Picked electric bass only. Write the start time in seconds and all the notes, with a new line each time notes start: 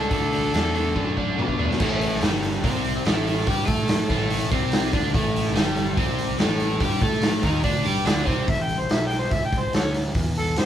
0.11 D2
0.54 E2
0.96 F#2
1.38 B2
1.80 A1
2.22 G1
2.63 C2
3.05 A1
3.47 G2
3.68 A2
4.09 A1
4.52 C2
4.93 D2
5.14 A1
5.55 G1
5.97 C2
6.38 A1
6.81 G2
7.01 A2
7.43 D#2
7.64 D2
7.85 G2
8.05 D2
8.27 C2
8.48 A1
8.89 B1
9.31 C#2
9.75 D2
10.15 E2
10.57 F#2